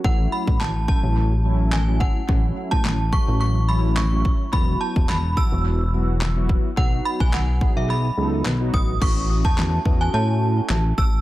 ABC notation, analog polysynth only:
X:1
M:4/4
L:1/16
Q:1/4=107
K:Alyd
V:1 name="Analog polysynth"
[F,A,CE]4- [F,A,CE] z [F,A,CE]3 z [F,A,CE]2 z [F,A,CE]2 z | [F,A,CE]4- [F,A,CE] z [F,A,CF]3 z [F,A,CE]2 z [F,A,CE]2 z | [F,B,EF]4- [F,B,EF] z [F,B,EF]3 z [F,B,EF]2 z [F,B,EF]2 z | [F,B,DF]4- [F,B,DF] z [F,B,DG]3 z [F,B,DA]2 z [F,B,DF]2 z |
[A,CEF]3 z [A,CEF]2 [A,CEF]6 z4 |]